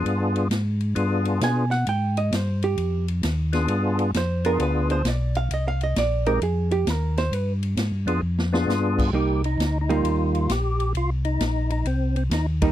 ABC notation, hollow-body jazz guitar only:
X:1
M:4/4
L:1/8
Q:"Swing" 1/4=132
K:Cm
V:1 name="Hollow-body jazz guitar"
z6 a ^f | g e c G2 z3 | z2 c B =B c d f | (3e f e d B A G B c |
=B z6 z | [G,B,E] z2 [G,B,E]3 z2 | z6 z [G,B,E] |]